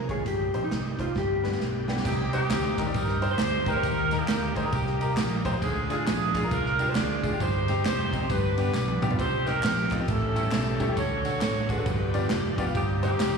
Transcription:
Already playing: tonewheel organ F3 G#3 C#4 G#4, clean electric guitar A#4
0.09 fingered electric bass D#2, grand piano G#3 C#4 F4 C#5, clean electric guitar G#4, kick, closed hi-hat
0.26 fingered electric bass G1, grand piano G2, tonewheel organ D#3 G3 C4 G4, clean electric guitar G4, kick, closed hi-hat
0.54 fingered electric bass A#1, grand piano G3 C4 D#4 C5, closed hi-hat
0.64 clean electric guitar D#4
0.71 fingered electric bass C2, snare, closed hi-hat
0.99 grand piano G3 C4 D#4 C5, clean electric guitar F4, kick, closed hi-hat
1.16 fingered electric bass G1, grand piano G2, tonewheel organ D3 G3 B3 G4, clean electric guitar G4, kick, snare
1.43 grand piano G3 B3 D4 B4, snare
1.52 snare
1.60 fingered electric bass B1, snare
1.88 grand piano G3 B3 D4 G4, snare
1.97 snare
2.05 fingered electric bass C2, grand piano C3, tonewheel organ G3 C4 D#4, saxophone section C4 D#4 G4, kick, crash, tambourine
2.32 saxophone section C4 D#4 G4, grand piano D#4 G4 C5, snare, ride, tambourine
2.50 fingered electric bass D2, snare, clap, ride, tambourine
2.77 fingered electric bass D#2, grand piano D#4 G4 A#4, kick, clap, ride, tambourine
2.86 grand piano D#4 G4 D5
2.94 fingered electric bass G2, saxophone section D#4 G4 A#4, kick, ride, tambourine
3.08 snare
3.21 grand piano D#4 G4 C5, ride, tambourine
3.31 saxophone section D#4 G4 C5
3.38 fingered electric bass D2, snare, clap, ride, tambourine
3.66 grand piano D#4 G4 A#4, saxophone section D#4 G4 A#4, kick, ride, tambourine
3.75 grand piano D#4 G4 C5
3.83 fingered electric bass D#2, grand piano D#3, tonewheel organ G3 A#3 D#4, kick, ride, tambourine
4.11 grand piano D#4 G4 A#4, snare, ride, tambourine
4.20 saxophone section A#3 D#4 G4
4.28 fingered electric bass D2, snare, clap, ride, tambourine
4.56 grand piano D#4 G4 C5, saxophone section G#4, kick, ride, tambourine
4.64 grand piano D#4 G4 A#4
4.72 fingered electric bass C2, saxophone section A#3 D#4 G4, kick, ride, tambourine
4.87 snare
5.01 grand piano D#4 G4 A#4, ride, tambourine
5.17 fingered electric bass A#1, snare, clap, ride, tambourine
5.45 grand piano D#4 G4 C5, kick, ride, tambourine
5.53 grand piano D#4 G4 C5
5.62 fingered electric bass D2, grand piano D3, tonewheel organ G#3 D4 E4, saxophone section D4 F4 G#4, kick, ride, tambourine
5.68 tonewheel organ F4
5.89 grand piano D4 F4 G#4, saxophone section D4 F4 G#4, snare, ride, tambourine
6.07 fingered electric bass A#1, snare, clap, ride, tambourine
6.34 grand piano D4 F4 G#4, kick, clap, ride, tambourine
6.43 grand piano D4 F4 A#4
6.51 fingered electric bass C2, saxophone section D4 F4 A#4, kick, ride, tambourine
6.65 snare
6.79 grand piano D4 F4 G4, ride, tambourine
6.89 saxophone section C5
6.95 fingered electric bass D2, saxophone section F4 G#4 D5, snare, clap, ride, tambourine
7.23 grand piano D4 F4 G#4, kick, ride, tambourine
7.32 grand piano D4 F4 G4
7.40 fingered electric bass G1, grand piano G2, tonewheel organ G3 C4 D#4, saxophone section D#4 G4 C5, kick, ride, tambourine
7.68 grand piano C4 D#4 G4, snare, ride, tambourine
7.85 fingered electric bass F1, saxophone section D#4 G4 C5, snare, clap, ride, tambourine
8.13 grand piano C4 D#4 G4, kick, ride, tambourine
8.22 grand piano C4 D#4 G4
8.30 fingered electric bass G1, grand piano G2, tonewheel organ G3 B3 D4, saxophone section D4 G4 B4, kick, ride, tambourine
8.57 grand piano B3 D4 G4, ride, tambourine
8.74 fingered electric bass B1, snare, clap, tambourine
8.88 high tom
9.02 fingered electric bass C2, grand piano B3 D4 G4, mid tom, tambourine
9.10 grand piano B3 D4 F4, floor tom
9.18 grand piano C3, tonewheel organ G3 C4 D4, saxophone section D#4 G4 C5, kick, ride, tambourine
9.24 tonewheel organ D#4
9.46 grand piano C4 D#4 G4, saxophone section D#4 G4 A#4, snare, ride, tambourine
9.63 fingered electric bass A#1, snare, clap, ride, tambourine
9.91 grand piano C4 D#4 F4, kick, clap, ride, tambourine
9.99 grand piano C4 D#4 G4
10.08 fingered electric bass A1, grand piano A2, tonewheel organ E3 G3 A3 C#4 G4, saxophone section C#4 E4 A4, kick, ride, tambourine
10.35 grand piano G3 A3 C#4 E4 A4, ride, tambourine
10.51 fingered electric bass B1, snare, clap, ride, tambourine
10.80 grand piano G3 A3 C#4 E4 A4, kick, ride, tambourine
10.88 grand piano G3 A3 C#4 E4 G4
10.97 fingered electric bass D2, grand piano D3, tonewheel organ A3 D4 F#4, saxophone section F#4 A4 C#5, kick, ride, tambourine
11.25 grand piano D4 F#4 A4, snare, ride, tambourine
11.41 fingered electric bass A1, snare, clap, ride, tambourine
11.69 grand piano D4 F#4 G#4, saxophone section D4 F4 B4, kick, ride, tambourine
11.77 grand piano D4 F#4 A4
11.86 fingered electric bass G1, grand piano G2, tonewheel organ F3 G3 B3 D4 G4, kick, ride, tambourine
12.14 grand piano B3 D4 F4 G4 D5, ride, tambourine
12.29 fingered electric bass F1, snare, clap, ride, tambourine
12.58 grand piano B3 D4 F4 G4 D5, kick, ride, tambourine
12.67 grand piano B3 D4 F4 G4 F5
12.75 fingered electric bass G1, grand piano G2, tonewheel organ G3 C4 D#4, saxophone section C4 D#4 G4, kick, ride, tambourine
13.02 saxophone section C4 D#4 G4, grand piano D#4 G4 C5, snare, ride, tambourine
13.20 fingered electric bass F1, snare, clap, ride, tambourine

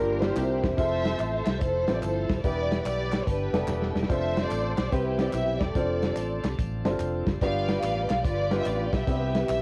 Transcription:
Already playing: fretless electric bass G1, upright piano G2 A#3 D4 F4 G4 A#4, tonewheel organ D3 G3 A#3 F4, string section D4 F4 A#4
0.20 upright piano A#3 D4 F4 G4 C5, string section E4 G4 C5, snare, closed hi-hat, tambourine
0.36 fretless electric bass C2, upright piano C3 C4 D4 E4 G4 A#4, tonewheel organ A#3 C4 E4, clap, closed hi-hat, tambourine
0.64 fretless electric bass E1, kick, snare, closed hi-hat, tambourine
0.77 fretless electric bass F1, tonewheel organ F3 A3 A4, upright piano C4 E4 F4 G#4 C5, string section A4 C5 E5, kick, closed hi-hat, tambourine
0.82 upright piano A4
1.05 snare, closed hi-hat, tambourine
1.19 fretless electric bass A1, clap, closed hi-hat, tambourine
1.45 fretless electric bass C2, string section E5, snare, clap, closed hi-hat, tambourine
1.59 fretless electric bass F1, string section E4 A4 C5, kick, closed hi-hat, tambourine
1.88 fretless electric bass A1, upright piano F3 C4 E4 A4 B4, snare, closed hi-hat, tambourine
1.93 upright piano C5, string section D5
2.01 fretless electric bass G1, string section E4 A4 C5, clap, closed hi-hat, tambourine
2.29 fretless electric bass D#1, kick, snare, closed hi-hat, tambourine
2.42 fretless electric bass E1, tonewheel organ D3 G3 B3 E4, upright piano E3 B3 D4 E4 G4 B4, string section G4 B4 D5, kick, closed hi-hat, tambourine
2.72 snare, closed hi-hat, tambourine
2.83 fretless electric bass B1, string section G4 B4 D5, clap, closed hi-hat, tambourine
3.12 snare, clap, closed hi-hat, tambourine
3.26 fretless electric bass G1, string section D4 G4 B4, kick, closed hi-hat, tambourine
3.52 fretless electric bass F1, upright piano B3 D4 E4 G4 A4, snare, closed hi-hat, tambourine
3.67 fretless electric bass E1, snare, clap, tambourine
3.82 snare
3.95 fretless electric bass E1, snare, tambourine
4.03 snare
4.09 fretless electric bass F1, tonewheel organ A3 C4 F4, upright piano C4 D4 F4 A4 C5, string section A4 C5 E5, kick, closed hi-hat, tambourine
4.37 snare, closed hi-hat, tambourine
4.43 string section A4 D5
4.51 fretless electric bass A1, clap, closed hi-hat, tambourine
4.77 fretless electric bass B1, string section D5, snare, clap, closed hi-hat, tambourine
4.92 fretless electric bass C2, upright piano C3 C4 E4 G4 B4 C5, tonewheel organ E3 G3 G4, string section E4 G4 B4, kick, closed hi-hat, tambourine
5.19 upright piano C4 E4 G4 B4 C5, string section D5, snare, closed hi-hat, tambourine
5.33 fretless electric bass B1, string section E5, clap, closed hi-hat, tambourine
5.60 fretless electric bass E1, string section A4 D5, kick, snare, closed hi-hat, tambourine
5.75 fretless electric bass F1, tonewheel organ F3 C4 D4 A4, upright piano C4 D4 F4 A4 C5, kick, closed hi-hat, tambourine
6.02 snare, closed hi-hat, tambourine
6.16 fretless electric bass A1, clap, closed hi-hat, tambourine
6.44 fretless electric bass C2, snare, clap, closed hi-hat, tambourine
6.58 fretless electric bass A1, kick, closed hi-hat, tambourine
6.85 upright piano C4 D4 E4 A4 C5, snare, closed hi-hat, tambourine
6.90 upright piano F4
6.99 fretless electric bass F1, clap, closed hi-hat, tambourine
7.27 fretless electric bass F#1, kick, snare, closed hi-hat, tambourine
7.41 fretless electric bass G1, upright piano G2 B3 D4 F4 G4 B4, tonewheel organ G3 G4, string section B4 D5 F5, kick, closed hi-hat, tambourine
7.68 snare, closed hi-hat, tambourine
7.82 fretless electric bass A1, string section F5, clap, closed hi-hat, tambourine
8.09 fretless electric bass B1, string section F5, snare, clap, closed hi-hat, tambourine
8.24 fretless electric bass G1, string section F4 B4 D5, kick, closed hi-hat, tambourine
8.51 upright piano B3 D4 F4 G4 B4, snare, closed hi-hat, tambourine
8.58 string section E5
8.65 fretless electric bass A1, string section D5, clap, closed hi-hat, tambourine
8.93 fretless electric bass B1, string section G4 B4 E5, kick, snare, closed hi-hat, tambourine
9.07 fretless electric bass C2, upright piano C3 B3 C4 D4 G4 B4, tonewheel organ E3 E4, kick, closed hi-hat, tambourine
9.12 upright piano E4
9.35 snare, closed hi-hat, tambourine
9.48 fretless electric bass B1, string section E5, clap, closed hi-hat, tambourine

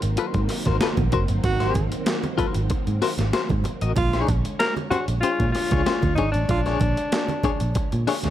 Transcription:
Already playing: string machine D#3 F#3 A#3 C4
0.02 fingered electric bass G#1, muted clean electric guitar stroke, closed hi-hat
0.17 clean electric guitar F#4 A#4 C5, closed hi-hat, muted conga
0.34 fingered electric bass G#2, kick, closed hi-hat
0.49 muted clean electric guitar stroke, snare, open hi-hat
0.65 fingered electric bass G#1, clean electric guitar F#4 A#4 C5, kick, snare, closed hi-hat, high conga
0.81 clean electric guitar F#4 A#4 C5, snare, closed hi-hat, muted conga
0.97 fingered electric bass A#1, muted clean electric guitar stroke, kick, closed hi-hat, high conga
1.12 fingered electric bass F#1, clean electric guitar F#4 A#4 C5, kick, closed hi-hat, muted conga, low conga
1.28 fingered electric bass G1, muted clean electric guitar stroke, closed hi-hat
1.43 fingered electric bass G#1, baritone saxophone F#4, muted clean electric guitar stroke, kick, closed hi-hat, low conga
1.60 clean electric guitar F#4 A#4 C5, snare, closed hi-hat
1.74 fingered electric bass G#1, muted clean electric guitar stroke, kick, closed hi-hat, muted conga, high conga
1.92 muted clean electric guitar stroke, closed hi-hat
2.06 muted clean electric guitar stroke, snare, closed hi-hat
2.24 muted clean electric guitar stroke, closed hi-hat, high conga
2.38 clean electric guitar F#4 A#4 C5, muted fingered electric bass stroke, kick, closed hi-hat, low conga
2.54 fingered electric bass G#1, muted clean electric guitar stroke, closed hi-hat
2.70 muted clean electric guitar stroke, muted fingered electric bass stroke, kick, closed hi-hat, muted conga
2.87 fingered electric bass G#2, closed hi-hat
3.02 clean electric guitar F#4 A#4 C5, snare, open hi-hat
3.18 fingered electric bass G#1, muted clean electric guitar stroke, snare, closed hi-hat, high conga
3.33 clean electric guitar F#4 A#4 C5, snare, closed hi-hat
3.49 fingered electric bass G#2, kick, closed hi-hat, high conga
3.64 muted clean electric guitar stroke, closed hi-hat, low conga
3.81 fingered electric bass A1, clean electric guitar F#4 A#4 D#5, closed hi-hat
3.96 fingered electric bass A#1, string machine D3 G#3 C#5, baritone saxophone F4, muted clean electric guitar stroke, kick, closed hi-hat, muted conga, low conga
4.13 clean electric guitar D4 G#4 C#5, snare, closed hi-hat
4.27 fingered electric bass A#1, muted clean electric guitar stroke, kick, closed hi-hat, high conga
4.45 muted clean electric guitar stroke, closed hi-hat
4.59 alto saxophone A#4, muted clean electric guitar stroke, snare, closed hi-hat
4.77 muted clean electric guitar stroke, closed hi-hat, high conga
4.91 clean electric guitar D4 G#4 C#5, alto saxophone F#4, muted fingered electric bass stroke, closed hi-hat, low conga
5.08 fingered electric bass A#1, muted clean electric guitar stroke, closed hi-hat
5.21 clean electric guitar D4 G#4 C#5, alto saxophone F4, muted fingered electric bass stroke, closed hi-hat, muted conga
5.40 fingered electric bass A#2, kick, closed hi-hat
5.52 alto saxophone F4, muted clean electric guitar stroke, snare, open hi-hat
5.71 fingered electric bass C#2, clean electric guitar D4 G#4 C#5, kick, snare, closed hi-hat, high conga
5.86 clean electric guitar D4 G#4 C#5, snare, closed hi-hat
6.02 fingered electric bass D2, muted clean electric guitar stroke, kick, closed hi-hat, high conga
6.15 fingered electric bass G#1, clean electric guitar D4 G#4 C#5, alto saxophone D#4, kick, closed hi-hat, low conga
6.32 fingered electric bass A1, alto saxophone D4, muted clean electric guitar stroke, closed hi-hat
6.49 fingered electric bass A#1, baritone saxophone F4, muted clean electric guitar stroke, kick, closed hi-hat, muted conga, low conga
6.66 clean electric guitar D4 G#4 C#5, snare, closed hi-hat
6.80 fingered electric bass A#1, muted clean electric guitar stroke, kick, closed hi-hat, muted conga, high conga
6.97 muted clean electric guitar stroke, closed hi-hat
7.12 muted clean electric guitar stroke, snare, closed hi-hat, muted conga
7.28 muted clean electric guitar stroke, closed hi-hat, high conga
7.43 clean electric guitar D4 G#4 C#5, muted fingered electric bass stroke, kick, closed hi-hat, muted conga, low conga
7.60 fingered electric bass A#1, muted clean electric guitar stroke, closed hi-hat
7.74 muted fingered electric bass stroke, muted clean electric guitar stroke, kick, closed hi-hat, muted conga
7.92 fingered electric bass A#2, muted clean electric guitar stroke, closed hi-hat
8.07 clean electric guitar D4 G#4 C#5, snare, open hi-hat
8.23 fingered electric bass D2, clean electric guitar D4 G#4 C#5, snare, closed hi-hat, high conga

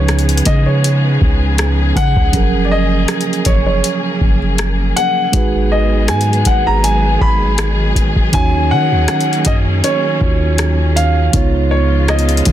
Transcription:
Already playing: 808-style bass C#2, tine electric piano C#3 F3 C#4 D#4 B4, string section C#3 F3 G#3 B3 G#4, grand piano C#5
0.08 cross-stick, closed hi-hat
0.19 closed hi-hat
0.29 closed hi-hat
0.38 closed hi-hat
0.45 808-style bass C#3, grand piano D#5, kick, closed hi-hat
0.66 grand piano C#5
0.84 closed hi-hat
1.21 808-style bass C#2, kick
1.58 cross-stick, closed hi-hat
1.96 808-style bass C#3, grand piano F#5, kick, closed hi-hat
2.16 808-style bass C#2, kick
2.32 808-style bass F#1, tine electric piano F3 F#3 C#4 G#4, string section A#3, kick, closed hi-hat
2.37 tine electric piano A#4
2.65 grand piano D5
2.71 grand piano D#5
3.08 cross-stick, closed hi-hat
3.21 closed hi-hat
3.33 closed hi-hat
3.45 808-style bass F#1, grand piano C#5, kick, closed hi-hat
3.66 grand piano C#5
3.84 closed hi-hat
4.21 808-style bass F#1, kick
4.58 cross-stick, closed hi-hat
4.96 grand piano F#5, closed hi-hat
5.32 808-style bass G#1, string section D#3 F#3 G#3 B3 G#4, tine electric piano G#3 D#4 F#4 G#4, kick, closed hi-hat
5.37 tine electric piano B4
5.72 grand piano D#5
6.08 808-style bass G#2, grand piano G#5, cross-stick, closed hi-hat
6.21 closed hi-hat
6.33 closed hi-hat
6.45 808-style bass G#1, grand piano F#5, kick, closed hi-hat
6.67 grand piano A#5
6.84 grand piano G#5, closed hi-hat
7.21 808-style bass G#1, grand piano B5, kick
7.58 cross-stick, closed hi-hat
7.95 808-style bass G#1, kick, closed hi-hat
8.16 808-style bass G#1, kick
8.32 808-style bass D#2, tine electric piano D#3 C#4 D#4 F#4, string section A#3 C#4, grand piano G#5, kick, closed hi-hat
8.37 tine electric piano C#5
8.71 808-style bass D#3, grand piano F#5
8.92 808-style bass D#2
9.08 grand piano F#5, cross-stick, closed hi-hat
9.21 closed hi-hat
9.33 closed hi-hat
9.45 808-style bass F#2, grand piano D#5, kick, closed hi-hat
9.84 grand piano C#5, closed hi-hat
10.21 808-style bass D#2, tine electric piano D#3 D#4 F4 F#4 C#5, kick
10.58 cross-stick, closed hi-hat
10.96 grand piano F5, closed hi-hat
11.32 808-style bass C#2, tine electric piano C#3 B3 D#4 F4, string section C#3 F3 G#3 B3 F4, kick, closed hi-hat
11.37 tine electric piano C#5
11.71 grand piano C#5
12.08 grand piano D#5, cross-stick, closed hi-hat
12.19 closed hi-hat
12.29 closed hi-hat
12.37 closed hi-hat
12.45 808-style bass C#3, kick, closed hi-hat

